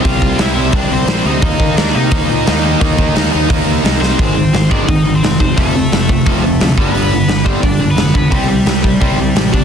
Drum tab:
HH |o-o-o-o-|o-o-o-o-|o-o-o-o-|o-o-o-o-|
SD |--o---o-|--o---o-|--o---oo|--o---o-|
BD |oo--o---|oo--o---|oo--o---|o--oo--o|

HH |o-o-o-o-|o-o-o-o-|o-o-o-o-|
SD |--o---o-|--o---o-|--o---o-|
BD |o--oo--o|---oo--o|o--oo--o|